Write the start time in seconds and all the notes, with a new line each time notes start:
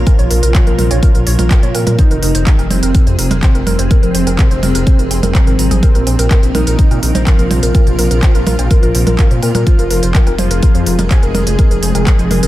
Already playing: C3 F3 C4 F4 A#4
0.07 A#4, kick, closed hi-hat, low woodblock
0.19 A#1 C#5, closed hi-hat
0.30 A#1 A#4, open hi-hat
0.43 A#1 A#4, closed hi-hat
0.55 C#5, kick, clap, closed hi-hat
0.67 A#1 A#4, closed hi-hat
0.79 A#1 A#4, open hi-hat, percussion blips
0.91 A#1 C#5, closed hi-hat, low woodblock
1.03 A#4, kick, closed hi-hat
1.15 A#1 A#4, closed hi-hat
1.27 A#1 C#5, open hi-hat
1.39 A#1 A#4, closed hi-hat, percussion blips
1.51 A#4, kick, clap, closed hi-hat
1.63 A#2 C#5, closed hi-hat
1.75 A#2 A#4, open hi-hat, low woodblock
1.87 A#2 A#4, closed hi-hat, percussion blips
1.98 D#3 F3 D#4 G#4 C5, kick, closed hi-hat
2.11 F1 A#4, closed hi-hat
2.23 F1 A#4, open hi-hat
2.35 F1 C5, closed hi-hat
2.47 A#4, kick, clap, closed hi-hat
2.59 F1 A#4, closed hi-hat, low woodblock
2.71 F1 C3 C4 C5, open hi-hat, percussion blips
2.83 F1 A#4, closed hi-hat
2.95 A#4, kick, closed hi-hat
3.07 F2 C5, closed hi-hat
3.19 F1 A#4, open hi-hat
3.31 F1 A#4, closed hi-hat, percussion blips
3.43 C3 C4 C5, kick, clap, closed hi-hat, low woodblock
3.55 F1 A#4, closed hi-hat
3.67 F1 A#4, open hi-hat, percussion blips
3.79 F1 C5, closed hi-hat
3.91 A#4, kick, closed hi-hat
4.03 F1 A#4, closed hi-hat
4.15 F1 C5, open hi-hat
4.27 F1 A#4, closed hi-hat, low woodblock
4.39 A#4, kick, clap, closed hi-hat
4.51 F1 C5, closed hi-hat
4.63 F1 A#4, open hi-hat, percussion blips
4.75 F1 A#4, closed hi-hat
4.87 C5, kick, closed hi-hat
4.99 F1 A#4, closed hi-hat
5.11 F1 C6, open hi-hat, low woodblock
5.23 F1 A#4, closed hi-hat, percussion blips
5.35 A#5, kick, clap, closed hi-hat
5.47 G#1 A#4, closed hi-hat
5.59 G#1 A#5, open hi-hat
5.71 G#1 G#4, closed hi-hat, percussion blips
5.82 C3 C4 A#4, kick, closed hi-hat
5.95 A#1 A#4, closed hi-hat
6.06 A#1 C5, open hi-hat, low woodblock
6.19 A#1 A#4, closed hi-hat
6.31 A#4, kick, clap, closed hi-hat
6.43 A#1 C5, closed hi-hat
6.54 A#1 D#3 D#4 A#4, open hi-hat, percussion blips
6.67 A#1 A#4, closed hi-hat
6.79 kick, closed hi-hat
6.91 A#2 A#4, closed hi-hat, low woodblock
7.03 A#1 A#4, open hi-hat
7.15 A#1 C5, closed hi-hat, percussion blips
7.27 F3 F4 A#4, kick, clap, closed hi-hat
7.39 A#1 A#4, closed hi-hat
7.50 A#1 C5, open hi-hat, percussion blips
7.63 A#1 A#4, closed hi-hat
7.75 A#4, kick, closed hi-hat, low woodblock
7.87 A#1 C5, closed hi-hat
7.99 A#1 A#4, open hi-hat
8.11 A#1 A#4, closed hi-hat
8.23 C5, kick, clap, closed hi-hat
8.35 A#1 A#4, closed hi-hat
8.47 A#1 A#4, open hi-hat, percussion blips
8.59 A#1 C5, closed hi-hat, low woodblock
8.71 A#4, kick, closed hi-hat
8.83 A#1 A#4, closed hi-hat
8.95 A#1 C5, open hi-hat
9.07 A#1 A#4, closed hi-hat, percussion blips
9.19 A#4, kick, clap, closed hi-hat
9.31 A#2 C5, closed hi-hat
9.42 A#2 A#4, open hi-hat, low woodblock
9.55 A#2 A#4, closed hi-hat, percussion blips
9.66 F3 C4 F4 G#4 C5, kick, closed hi-hat
9.79 F1 A#4, closed hi-hat
9.90 F1 A#4, open hi-hat
10.03 F1 C5, closed hi-hat
10.15 A#4, kick, clap, closed hi-hat
10.27 F1 A#4, closed hi-hat, low woodblock
10.39 F1 F3 F4 C5, open hi-hat, percussion blips
10.51 F1 A#4, closed hi-hat
10.63 A#4, kick, closed hi-hat
10.75 F2 C5, closed hi-hat
10.86 F1 A#4, open hi-hat
10.99 F1 A#4, closed hi-hat, percussion blips
11.11 G#3 G#4 C5, kick, clap, closed hi-hat, low woodblock
11.23 F1 A#4, closed hi-hat
11.35 F1 A#4, open hi-hat, percussion blips
11.47 F1 C5, closed hi-hat
11.59 A#4, kick, closed hi-hat
11.71 F1 A#4, closed hi-hat
11.83 F1 C5, open hi-hat
11.95 F1 A#4, closed hi-hat, low woodblock
12.07 A#4, kick, clap, closed hi-hat
12.19 F1 C5, closed hi-hat
12.31 F1 A#4, open hi-hat, percussion blips
12.43 F1 A#4, closed hi-hat